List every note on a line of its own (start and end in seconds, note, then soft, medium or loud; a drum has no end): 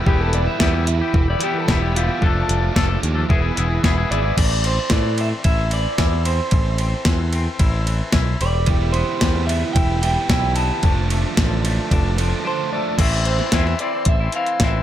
0.00 0.56 E3 medium
0.00 0.46 G3 medium
0.00 2.19 G4 medium
0.00 2.19 B4 medium
0.00 2.19 E5 medium
0.00 2.19 B5 medium
0.05 0.47 E1 medium
0.05 0.58 G3 medium
0.05 0.44 B3 medium
0.05 0.59 B3 loud
0.05 0.43 E4 medium
0.05 0.61 E4 medium
0.05 0.21 G4 medium
0.05 0.61 G4 medium
0.05 kick loud
0.21 0.33 A4 medium
0.33 0.47 D5 medium
0.33 closed hi-hat loud
0.44 0.57 G3 medium
0.44 0.58 B3 medium
0.44 0.59 E4 medium
0.44 1.25 E5 medium
0.57 1.00 E2 medium
0.57 0.83 E3 medium
0.57 0.84 G3 medium
0.57 0.87 G3 medium
0.57 0.85 B3 medium
0.57 0.75 B3 medium
0.57 0.87 E4 medium
0.57 kick loud
0.57 snare loud
0.62 0.74 E4 loud
0.62 0.72 G4 loud
0.73 0.86 B3 medium
0.73 0.87 E4 medium
0.73 0.87 G4 medium
0.84 1.26 E3 medium
0.84 0.99 G3 medium
0.84 0.98 B3 medium
0.84 0.98 E4 medium
0.84 muted clean electric guitar stroke soft
0.84 closed hi-hat medium
0.99 1.27 G4 medium
0.99 muted overdriven electric guitar stroke soft
1.03 1.30 B3 medium
1.03 1.29 E4 medium
1.14 1.34 E1 loud
1.14 kick loud
1.28 1.42 B3 medium
1.28 1.43 E4 medium
1.28 1.44 G4 medium
1.28 1.42 D5 medium
1.39 1.65 E3 medium
1.39 1.52 G3 medium
1.39 1.67 G3 medium
1.39 1.53 B3 medium
1.39 1.68 B3 medium
1.39 1.52 E4 medium
1.39 closed hi-hat medium
1.43 1.69 E4 medium
1.43 1.58 G4 medium
1.43 1.69 G4 medium
1.53 muted overdriven electric guitar stroke soft
1.58 1.72 A4 medium
1.66 2.09 E1 loud
1.66 1.92 E3 medium
1.66 1.93 G3 loud
1.66 1.94 B3 medium
1.66 1.84 B3 loud
1.66 1.95 E4 loud
1.66 kick loud
1.66 snare loud
1.70 1.82 E4 loud
1.70 1.81 G4 loud
1.70 1.96 G4 medium
1.82 1.94 B3 medium
1.82 1.95 E4 medium
1.82 1.96 G4 medium
1.93 2.19 E3 medium
1.93 2.08 G3 medium
1.93 2.20 G3 medium
1.93 2.07 B3 medium
1.93 2.10 B3 medium
1.93 2.09 E4 medium
1.93 2.05 E4 medium
1.93 2.22 F4 medium
1.93 closed hi-hat loud
1.97 2.07 G4 medium
2.06 2.21 G3 medium
2.06 2.20 B3 medium
2.06 2.19 E4 medium
2.06 2.21 E4 medium
2.06 2.20 G4 medium
2.11 2.22 B3 medium
2.20 2.42 F1 loud
2.20 2.73 F3 medium
2.20 2.73 F3 loud
2.20 2.62 A3 medium
2.20 2.74 A3 medium
2.20 2.61 D4 medium
2.20 2.75 D4 loud
2.20 2.59 F4 loud
2.20 3.28 A4 medium
2.20 2.76 A4 loud
2.20 3.28 D5 medium
2.20 3.28 F5 medium
2.20 3.28 D6 medium
2.20 kick medium
2.49 2.69 F1 loud
2.49 closed hi-hat medium
2.60 2.74 A3 medium
2.60 2.75 D4 medium
2.60 2.76 F4 medium
2.74 2.96 F1 medium
2.74 2.99 F3 medium
2.74 3.00 F3 medium
2.74 3.01 A3 medium
2.74 2.90 A3 medium
2.74 2.88 D4 loud
2.74 3.02 D4 medium
2.74 3.03 F4 loud
2.74 2.87 A4 loud
2.74 kick medium
2.74 snare loud
2.88 3.01 A3 medium
2.88 3.01 D4 medium
2.88 3.01 A4 medium
3.01 3.23 D#2 loud
3.01 3.27 F3 medium
3.01 3.15 A3 medium
3.01 3.15 D4 medium
3.01 3.14 F4 medium
3.01 muted clean electric guitar stroke soft
3.01 closed hi-hat medium
3.15 3.29 A3 medium
3.15 3.28 D4 medium
3.15 3.27 A4 medium
3.15 muted overdriven electric guitar stroke soft
3.28 3.50 E1 medium
3.28 3.54 E3 loud
3.28 3.54 E3 medium
3.28 3.55 G#3 medium
3.28 3.44 B3 loud
3.28 3.56 B3 loud
3.28 3.42 E4 loud
3.28 3.58 E4 loud
3.28 4.36 G#4 medium
3.28 3.40 G#4 medium
3.28 4.36 B4 medium
3.28 4.35 E5 medium
3.28 4.36 B5 medium
3.28 kick loud
3.42 3.55 B3 medium
3.42 3.57 E4 medium
3.42 3.57 G#4 medium
3.55 3.78 E1 loud
3.55 3.82 E3 medium
3.55 3.81 E3 medium
3.55 3.69 G#3 medium
3.55 3.83 B3 medium
3.55 3.68 B3 medium
3.55 3.83 E4 medium
3.55 3.84 G#4 medium
3.55 closed hi-hat medium
3.59 3.68 E4 medium
3.69 muted overdriven electric guitar stroke medium
3.82 4.04 E1 loud
3.82 4.08 E3 loud
3.82 4.08 E3 medium
3.82 4.09 G#3 loud
3.82 3.99 B3 loud
3.82 4.10 B3 medium
3.82 3.98 E4 medium
3.82 3.97 G#4 loud
3.82 kick loud
3.82 snare loud
3.86 4.11 E4 loud
3.98 4.10 B3 medium
3.98 4.10 E4 medium
3.98 4.11 G#4 medium
4.09 4.31 G#1 medium
4.09 4.35 E3 medium
4.09 4.25 G#3 medium
4.09 4.24 B3 medium
4.09 4.23 E4 medium
4.09 4.22 E4 medium
4.09 4.21 G#4 medium
4.09 4.36 D5 medium
4.09 closed hi-hat medium
4.22 4.36 B3 medium
4.22 4.35 E4 medium
4.22 4.36 E4 medium
4.22 4.35 G#4 medium
4.26 4.37 G#3 medium
4.36 4.78 A1 loud
4.36 4.90 E3 medium
4.36 8.37 A4 medium
4.36 8.37 C5 medium
4.36 4.63 D5 medium
4.36 10.80 E5 medium
4.36 8.38 C6 medium
4.36 kick loud
4.36 crash loud
4.36 ride medium
4.64 5.17 C4 medium
4.64 4.93 C5 medium
4.64 ride medium
4.90 5.32 A2 medium
4.90 5.71 E3 medium
4.90 5.20 D5 medium
4.90 kick medium
4.90 snare loud
4.90 ride medium
5.18 6.24 C4 medium
5.18 5.28 E5 medium
5.18 ride medium
5.44 5.86 A1 medium
5.44 5.97 E4 medium
5.44 5.73 E5 loud
5.44 kick loud
5.44 ride loud
5.71 6.52 E3 medium
5.71 6.26 D5 loud
5.71 ride medium
5.98 6.39 E2 loud
5.98 7.60 E4 medium
5.98 kick loud
5.98 snare loud
5.98 ride medium
6.25 6.79 C4 medium
6.25 7.30 C5 medium
6.25 ride medium
6.51 6.93 A1 medium
6.51 7.05 E3 medium
6.51 kick loud
6.51 ride medium
6.78 7.32 C4 medium
6.78 ride medium
7.05 7.47 E2 medium
7.05 7.86 E3 medium
7.05 kick loud
7.05 snare loud
7.05 ride medium
7.33 8.41 C4 medium
7.33 ride medium
7.59 8.00 A1 medium
7.59 8.13 E4 medium
7.59 kick loud
7.59 ride loud
7.87 8.40 E3 medium
7.87 ride medium
8.12 8.34 B1 medium
8.12 8.41 E4 medium
8.12 kick loud
8.12 snare loud
8.12 ride medium
8.39 9.02 E1 medium
8.39 8.67 G3 medium
8.39 10.81 G4 medium
8.39 8.92 D5 medium
8.39 10.81 B5 medium
8.39 ride medium
8.66 10.01 E3 medium
8.66 9.21 G3 medium
8.66 10.02 B3 medium
8.66 10.02 E4 loud
8.66 kick loud
8.66 ride medium
8.71 10.01 G4 loud
8.92 9.49 B3 medium
8.92 9.46 C5 medium
8.92 ride medium
9.21 9.62 E2 medium
9.21 10.02 G3 medium
9.21 kick loud
9.21 snare loud
9.21 ride loud
9.47 10.56 B3 medium
9.47 9.73 E5 medium
9.47 ride medium
9.73 10.16 E1 medium
9.73 10.30 E4 medium
9.73 10.01 G5 loud
9.73 kick loud
9.73 ride loud
10.02 10.27 E3 medium
10.02 10.84 G3 medium
10.02 10.29 B3 medium
10.02 10.28 E4 medium
10.02 10.28 G4 medium
10.02 10.28 G5 loud
10.02 ride medium
10.28 10.70 B1 medium
10.28 10.82 E3 medium
10.28 10.82 B3 medium
10.28 10.84 E4 medium
10.28 10.83 E4 medium
10.28 10.56 G5 loud
10.28 kick loud
10.28 snare loud
10.28 ride loud
10.33 10.84 G4 medium
10.56 10.84 B3 medium
10.56 11.60 A5 loud
10.56 ride medium
10.82 11.24 F1 medium
10.82 12.17 F3 medium
10.82 11.38 F3 medium
10.82 12.17 A3 medium
10.82 12.17 D4 medium
10.82 12.97 F4 medium
10.82 12.97 A4 medium
10.82 12.97 D5 medium
10.82 12.97 A5 medium
10.82 kick loud
10.82 ride medium
10.87 12.16 A4 medium
11.10 11.65 A3 medium
11.10 ride medium
11.37 11.78 A1 loud
11.37 12.18 F3 medium
11.37 kick medium
11.37 snare loud
11.37 ride medium
11.65 12.72 A3 medium
11.65 ride medium
11.91 12.32 F1 loud
11.91 12.44 D4 medium
11.91 kick loud
11.91 ride loud
12.18 12.97 F3 medium
12.18 12.43 F3 medium
12.18 12.44 A3 medium
12.18 12.44 D4 medium
12.18 12.44 A4 medium
12.18 ride medium
12.44 12.97 F3 medium
12.44 12.98 A3 medium
12.44 12.99 D4 medium
12.44 12.98 D4 medium
12.44 12.99 A4 medium
12.44 12.72 C5 medium
12.73 12.98 A3 medium
12.73 13.01 D5 medium
12.98 13.39 A1 loud
12.98 13.25 E3 medium
12.98 13.27 C4 medium
12.98 13.28 E4 loud
12.98 14.83 A4 medium
12.98 14.83 C5 medium
12.98 14.83 E5 medium
12.98 13.28 E5 loud
12.98 14.83 C6 medium
12.98 kick loud
12.98 closed hi-hat medium
12.98 crash loud
13.25 13.51 E3 medium
13.25 13.42 C4 medium
13.25 13.39 E4 medium
13.25 13.54 C5 medium
13.25 closed hi-hat medium
13.39 13.53 C4 medium
13.39 13.54 E4 medium
13.39 snare soft
13.52 13.73 E2 medium
13.52 13.79 E3 medium
13.52 13.68 C4 loud
13.52 13.66 E4 loud
13.52 13.80 E5 medium
13.52 kick loud
13.52 snare loud
13.52 closed hi-hat loud
13.66 13.80 C4 medium
13.66 13.82 E4 medium
13.66 snare soft
13.79 14.33 E3 medium
13.79 13.95 C4 medium
13.79 13.93 E4 medium
13.79 14.08 D5 medium
13.79 closed hi-hat medium
13.93 14.22 C4 medium
13.93 14.20 E4 medium
14.05 14.27 A1 medium
14.05 14.35 E5 medium
14.05 kick loud
14.05 closed hi-hat loud
14.20 14.34 C4 medium
14.20 14.36 E4 medium
14.32 14.61 E3 medium
14.32 14.62 C4 medium
14.32 14.64 E4 medium
14.32 14.63 F5 medium
14.32 closed hi-hat medium
14.46 closed hi-hat soft
14.60 14.83 A1 loud
14.60 14.83 E3 medium
14.60 14.83 C4 medium
14.60 kick loud
14.60 snare loud
14.60 closed hi-hat loud
14.64 14.83 E4 loud
14.64 14.83 E5 loud